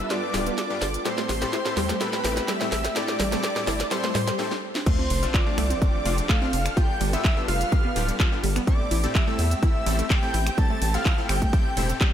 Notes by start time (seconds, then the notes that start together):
Already playing: G3 D4 F4 A4 B4 E5
0.10 G2 B3 D4 F4 G4 D5 D6, snare, closed hi-hat
0.34 D1 G2 G3 B3 D4 F4 G4, snare, open hi-hat
0.46 B3, closed hi-hat
0.58 D5 D6, snare, closed hi-hat
0.70 G2 B3 D4 F4 G4
0.82 G1 F4, snare, open hi-hat
0.94 closed hi-hat
1.05 A2 G3 A3 C4 E4 G4 A4 C5 C6, snare, closed hi-hat
1.18 A3, snare
1.29 A1, snare, open hi-hat
1.42 A2 C4 E4 G4 A4, snare, closed hi-hat
1.53 E4, snare, closed hi-hat
1.66 A2 C4 E4 G4 A4, snare
1.77 E2 G3, snare, open hi-hat
1.89 A3, snare, closed hi-hat
2.01 A2 C4 E4 G4 A4 B4 B5, snare, closed hi-hat
2.13 snare
2.24 A1 A2 C4 E4 G4 A4, snare, open hi-hat
2.37 snare, closed hi-hat
2.48 G3 E5 E6, snare, closed hi-hat
2.61 A2 A3 C4 E4 G4 A4, snare
2.72 A1, snare, open hi-hat
2.85 snare, closed hi-hat
2.96 A2 C4 E4 G4 A4 D5 D6, snare, closed hi-hat
3.08 snare
3.20 A1 G3, snare, open hi-hat
3.32 A2 A3 C4 E4 G4 A4, snare, closed hi-hat
3.44 snare, closed hi-hat
3.56 A2 C4 E4 G4 A4, snare
3.67 G1 E4, snare, open hi-hat
3.80 snare, closed hi-hat
3.91 A2 G3 C4 E4 G4 A4 C5 C6, snare, closed hi-hat
4.04 A3, snare
4.15 A2 G3, snare, open hi-hat
4.28 G4, snare, closed hi-hat
4.39 A2 C4 E4 G4 A4, snare
4.51 snare
4.75 snare
4.86 F3 A3 C4 D4 F4 G4 A4 C5 C6, kick, closed hi-hat, crash, sub drop
4.99 C4
5.10 F1, open hi-hat, ride
5.23 A3 C4 D4 F4, closed hi-hat
5.34 F4 D5 D6, kick, clap, closed hi-hat
5.47 A3 C4 D4 F4
5.58 C2 A3, finger snap, open hi-hat, ride
5.70 C4, closed hi-hat
5.82 A3 C4 D4 F4 D5 D6, kick, closed hi-hat
6.05 F1 A3 C4 D4 F4, open hi-hat, ride
6.18 closed hi-hat
6.29 A3 F5 F6, kick, clap, closed hi-hat
6.42 A3 C4 D4 F4
6.53 F1, open hi-hat, ride
6.66 finger snap, closed hi-hat
6.77 G2 G3 B3 D4 F4 G4 B4 G5 G6, kick, closed hi-hat
7.01 G1 G3, open hi-hat, ride
7.13 G2 B3 D4 F4 G4 E5 E6, closed hi-hat
7.25 kick, clap, closed hi-hat
7.37 G2 B3 D4 F4 G4
7.48 F1 F4 F5 F6, open hi-hat, ride
7.61 closed hi-hat
7.72 G2 G3 B3 D4 F4 G4, kick, closed hi-hat
7.85 B3
7.96 D1 G2 B3 D4 F4 G4, open hi-hat, ride
8.09 closed hi-hat
8.20 F4, kick, clap, closed hi-hat
8.32 G2 B3 D4 F4 G4
8.44 G1 G3, open hi-hat, ride
8.56 B3, finger snap, closed hi-hat
8.67 A2 A3 C4 E4 G4 A4 D5 D6, kick, closed hi-hat
8.91 A1 E4, open hi-hat, ride
9.04 A2 C4 E4 G4 A4, closed hi-hat
9.15 G3 E5 E6, kick, clap, closed hi-hat
9.28 A2 A3 C4 E4 G4 A4
9.39 E2, open hi-hat, ride
9.51 closed hi-hat
9.63 A2 C4 E4 G4 A4 E5 E6, kick, closed hi-hat
9.86 A1 A2 G3 C4 E4 G4 A4, open hi-hat, ride
9.99 A3, closed hi-hat
10.10 G5 G6, kick, clap, closed hi-hat
10.23 A2 C4 E4 G4 A4
10.34 A1 E4, open hi-hat, ride
10.47 finger snap, closed hi-hat
10.58 A2 G3 C4 E4 G4 A4 A5 A6, kick, closed hi-hat
10.70 A3
10.82 A1, open hi-hat, ride
10.94 A2 C4 E4 G4 A4 F5 F6, closed hi-hat
11.05 E4, kick, clap, closed hi-hat
11.18 A2 C4 E4 G4 A4
11.29 G1 G3 G5 G6, finger snap, open hi-hat, ride
11.42 A3, kick, closed hi-hat
11.53 A2 C4 E4 G4 A4, kick, closed hi-hat
11.77 E1 A2 C4 E4 G4 A4 C5, open hi-hat, ride
11.89 closed hi-hat
12.01 G3, kick, clap, closed hi-hat